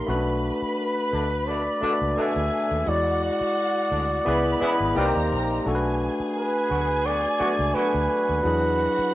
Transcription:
0.06 B1 A3 C#4 F#4 B4 B5
0.14 D4
0.62 muted fingered electric bass stroke
0.80 B4
1.12 D2 B2 D3 A3 D4
1.47 B2 D3 A3 D4 D5
1.81 B2 D3 A3 D4 F#4 A4, muted fingered electric bass stroke
1.91 B4
2.02 C#2
2.17 B2 D3 A3 D4 G#4 E5 G#5
2.36 D2
2.71 D#2
2.86 E2 G#3 E4 F#4 C#5 D5 F#5
2.96 D5
3.25 D5
3.41 muted fingered electric bass stroke
3.91 D2 B2 D3 G#3 D4
4.09 F#4
4.25 C#2 C#3 E3 B3 E4 G#4 B4 B5
4.45 G#3 E4
4.60 C#3 E3 B3 E4 G#4 B4, muted fingered electric bass stroke
4.80 G#1
4.95 C2 D#3 G3 A#3 C4 D#4 G4 A#4 B4 A#5
5.06 C5
5.16 D#2
5.32 A#1
5.65 B1 A3 D4 F#4 G#4 A4 G#5
5.75 B4
6.20 muted fingered electric bass stroke
6.37 B4
6.71 D2 D3 F#3 B3 F#4
7.05 D3 F#3 B3 F#4 D5
7.40 D3 F#3 A3 B3 D4 F#4 D5, muted fingered electric bass stroke
7.59 C#2
7.75 D3 F#3 B3 F#4 B4
7.94 D2
8.29 D#2
8.43 E2 F#3 D4 E4 F#4 G#4 F#5
8.99 muted fingered electric bass stroke

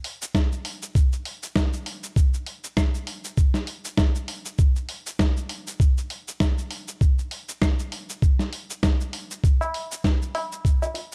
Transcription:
0.04 open hi-hat
0.22 cabasa
0.35 kick, snare, cabasa
0.52 cabasa
0.65 open hi-hat
0.82 cabasa
0.95 kick, cabasa
1.13 cabasa
1.25 open hi-hat
1.43 cabasa
1.56 kick, snare, cabasa
1.73 cabasa
1.86 open hi-hat
2.04 cabasa
2.16 kick, cabasa
2.34 cabasa
2.46 open hi-hat
2.64 cabasa
2.77 kick, snare, cabasa, claves
2.94 cabasa
3.07 open hi-hat
3.24 cabasa
3.37 kick, cabasa
3.54 snare, cabasa
3.67 open hi-hat
3.85 cabasa
3.97 kick, snare, cabasa
4.15 cabasa
4.28 open hi-hat
4.46 cabasa
4.59 kick, cabasa
4.76 cabasa
4.89 open hi-hat
5.07 cabasa
5.19 kick, snare, cabasa
5.37 cabasa
5.49 open hi-hat
5.67 cabasa
5.80 kick, cabasa
5.98 cabasa
6.10 open hi-hat
6.28 cabasa
6.40 kick, snare, cabasa
6.58 cabasa
6.71 open hi-hat
6.88 cabasa
7.01 kick, cabasa
7.19 cabasa
7.31 open hi-hat
7.49 cabasa
7.62 kick, snare, cabasa, claves
7.79 cabasa
7.92 open hi-hat
8.10 cabasa
8.22 kick, cabasa
8.39 snare, cabasa
8.53 open hi-hat
8.70 cabasa
8.83 kick, snare, cabasa
9.00 cabasa
9.13 open hi-hat
9.31 cabasa
9.44 kick, cabasa
9.61 tabla na, cabasa
9.74 open hi-hat
9.92 cabasa
10.04 kick, snare, cabasa
10.22 cabasa
10.35 open hi-hat, tabla na
10.52 cabasa
10.65 kick, cabasa
10.82 tabla na, tabla tin, cabasa
10.94 open hi-hat, tabla tin

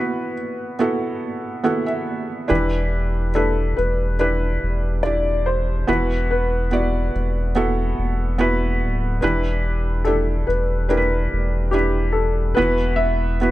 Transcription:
Already playing: E3 B3 E4 F#4 B4
0.79 B3 E4 F#4 A4
1.64 B3 E4 F#4 A4 F#5
1.86 E5
2.48 E1 E3 D4 E4 G4 B4
3.35 D4 E4 G4 A4 B4
3.77 E1 B4
4.19 D4 E4 G4 B4
4.63 E1
5.03 D4 E4 G4 D5
5.46 C5
5.87 E1 E3 B3 E4 F#4 B4
6.31 B4
6.71 B3 E4 F#4 D5
7.15 E1
7.55 B3 E4 F#4 A4
7.98 E1
8.38 B3 E4 F#4 B4
8.82 D1
9.21 E1 E3 D4 E4 G4 B4
10.04 D4 E4 G4 A4
10.47 E1 B4
10.89 D4 E4 G4 A#4 B4
10.97 B4
11.33 E1
11.71 D4 E4 G4 B4
12.12 A4
12.55 E1 E3 B3 E4 F#4 B4
12.96 E5
13.41 B3 E4 F#4 B4

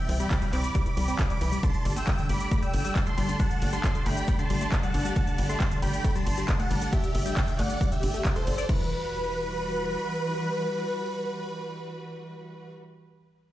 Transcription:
Already playing: E3 C4 G4 D5 E5 G5
0.09 C2 C4, open hi-hat, ride
0.20 G3 G5 B5, closed hi-hat, cabasa
0.31 E3, kick, clap, closed hi-hat, ride, cabasa
0.42 G3, closed hi-hat, cabasa
0.53 C2 C4 B5 D6, clap, open hi-hat, ride
0.64 closed hi-hat, cabasa
0.75 G3, kick, closed hi-hat, ride, cabasa
0.86 E3 B5 D6, closed hi-hat, cabasa
0.97 C2 G3, open hi-hat, ride
1.08 C4, closed hi-hat, cabasa
1.19 kick, clap, closed hi-hat, ride, cabasa
1.30 G3 B5 D6, closed hi-hat, cabasa
1.41 C2 E3, open hi-hat, ride
1.52 G3, closed hi-hat, cabasa
1.63 D3 A3 G4 D5 A5 C6, kick, closed hi-hat, ride, cabasa
1.74 closed hi-hat, cabasa
1.85 G1 G3, open hi-hat, ride
1.96 A3 G5 E6, closed hi-hat, cabasa
2.07 G3, kick, clap, closed hi-hat, ride, cabasa
2.18 D3, closed hi-hat, cabasa
2.29 G1 G3 B5 D6, open hi-hat, ride
2.40 closed hi-hat, cabasa
2.51 A3, kick, closed hi-hat, ride, cabasa
2.62 G3 G5 E6, closed hi-hat, cabasa
2.74 G1 D3, open hi-hat, ride
2.85 G3, closed hi-hat, cabasa
2.96 kick, clap, closed hi-hat, ride, cabasa
3.06 A3 A5 C6, closed hi-hat, cabasa
3.18 G1 G3, open hi-hat, ride
3.29 D3, closed hi-hat, cabasa
3.39 G3 F#5 A5, kick, closed hi-hat, ride, cabasa
3.50 closed hi-hat, cabasa
3.62 G1 A3, open hi-hat, ride
3.73 G3 A5 C6, closed hi-hat, cabasa
3.84 D3, kick, clap, closed hi-hat, ride, cabasa
3.95 A3, closed hi-hat, cabasa
4.06 G1 A3 G5 B5, clap, open hi-hat, ride
4.17 closed hi-hat, cabasa
4.28 G3, kick, closed hi-hat, ride, cabasa
4.39 D3 A5 C6, closed hi-hat, cabasa
4.50 G1 G3, open hi-hat, ride
4.61 A3, closed hi-hat, cabasa
4.72 kick, clap, closed hi-hat, ride, cabasa
4.83 G3 F#5 A5, closed hi-hat, cabasa
4.94 G1 D3, open hi-hat, ride
5.05 G3, closed hi-hat, cabasa
5.16 D3 F#5 A5, kick, closed hi-hat, ride, cabasa
5.27 closed hi-hat, cabasa
5.38 G1 G3, open hi-hat, ride
5.49 A3 A5 C6, closed hi-hat, cabasa
5.60 G3, kick, clap, closed hi-hat, ride, cabasa
5.71 D3, closed hi-hat, cabasa
5.82 G1 G3 G5 B5, open hi-hat, ride
5.93 closed hi-hat, cabasa
6.04 A3, kick, closed hi-hat, ride, cabasa
6.15 G3 A5 C6, closed hi-hat, cabasa
6.27 G1 D3, open hi-hat, ride
6.37 G3, closed hi-hat, cabasa
6.48 kick, clap, closed hi-hat, ride, cabasa
6.60 A3 F#5 A5, closed hi-hat, cabasa
6.71 G1 G3, open hi-hat, ride
6.81 D3, closed hi-hat, cabasa
6.93 G3 G4 E5, kick, closed hi-hat, ride, cabasa
7.04 closed hi-hat, cabasa
7.15 G1 A3, open hi-hat, ride
7.26 G3 E5 G5, closed hi-hat, cabasa
7.37 D3, kick, clap, closed hi-hat, ride, cabasa
7.48 A3, closed hi-hat, cabasa
7.59 G1 A3 D5 F#5, clap, open hi-hat, ride
7.70 closed hi-hat, cabasa
7.81 G3, kick, closed hi-hat, ride, cabasa
7.92 D3 G4 E5, closed hi-hat, cabasa
8.03 G1 D3, open hi-hat, ride
8.14 A3, closed hi-hat, cabasa
8.25 kick, clap, closed hi-hat, ride, cabasa
8.36 A3 A4 C5, closed hi-hat, cabasa
8.47 G1 D3, open hi-hat, ride
8.58 D5, closed hi-hat, cabasa
8.69 E1 E3 G3 F#4 B4, kick, crash

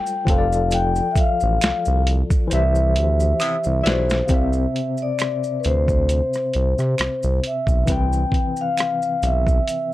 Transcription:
Already playing: G3 F4 A4 C5 G5
0.06 maracas
0.25 F1 F3 F4, kick, closed hi-hat
0.30 A4 C5 F5
0.38 D5
0.52 maracas
0.71 G5, closed hi-hat, maracas
0.96 maracas
1.11 E5
1.16 F5, kick, closed hi-hat, maracas
1.40 A1, maracas
1.61 C2, finger snap, snare, closed hi-hat, maracas
1.85 C2, maracas
2.07 closed hi-hat
2.30 kick, maracas
2.47 E3 C5, closed hi-hat, maracas
2.52 C2 G4 E5
2.75 maracas
2.96 D2, closed hi-hat
3.20 maracas
3.40 C3 E3 B3 E4, finger snap, closed hi-hat, maracas
3.64 C2, maracas
3.81 B2 E3 E4 D5
3.86 B1 C5, snare, closed hi-hat
4.10 snare, maracas
4.25 C3 F5, kick, maracas
4.30 C2 C4 C5 E5, closed hi-hat
4.34 E5
4.53 maracas
4.76 closed hi-hat
4.98 maracas
5.02 D5
5.19 finger snap, cross-stick, closed hi-hat, maracas
5.44 maracas
5.60 B4, maracas
5.65 D2 C5, closed hi-hat
5.88 kick, maracas
6.09 closed hi-hat, maracas
6.33 cross-stick, maracas
6.53 C2, closed hi-hat
6.78 C3, cross-stick, maracas
6.98 C2, finger snap, cross-stick, closed hi-hat, maracas
7.23 C2, maracas
7.44 E5, closed hi-hat
7.67 B1, kick, maracas
7.85 C2 E3 C4, kick, closed hi-hat, maracas
7.90 B4 G5
8.13 maracas
8.32 kick, closed hi-hat
8.57 maracas
8.61 F5
8.78 finger snap, cross-stick, closed hi-hat, maracas
9.02 maracas
9.23 B1 E5, closed hi-hat, maracas
9.47 kick, maracas
9.68 closed hi-hat, maracas

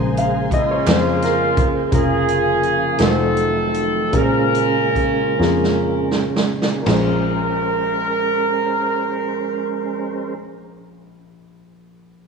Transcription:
Already playing: A#1 C#3 G#3 A#3 G#4 C5 G#5 A#5 C6
0.17 F5, closed hi-hat
0.51 G#3 C#4 F4 D#5, kick, closed hi-hat
0.71 C#5
0.86 F2 C5, snare, clap, closed hi-hat
1.22 A#4, snare, closed hi-hat
1.57 kick, closed hi-hat
1.91 F1 C#3 F3 A#3 C#4 F4 G#4 A#4, kick, closed hi-hat
2.28 closed hi-hat
2.63 closed hi-hat
2.98 F1 D#3 F3 F#3 A3 D#4 F4 F#4 A#4, snare, closed hi-hat
3.03 C4 D#4 A4
3.07 C5
3.37 closed hi-hat
3.74 closed hi-hat
4.12 A#1 A#2 C#3 G#3 A#3 C#4 F4 G#4 A#4, kick, closed hi-hat
4.21 C5
4.55 closed hi-hat
4.95 kick, closed hi-hat
5.39 F2 A#3 C#4 F4 G#4 C#5, snare
5.64 snare
6.11 snare
6.36 snare
6.62 snare
6.82 A#1 G#3 A#3 C#4 A#4 C5
6.86 A#1 F4 G#4 A#4, snare, floor tom, crash
6.90 C5

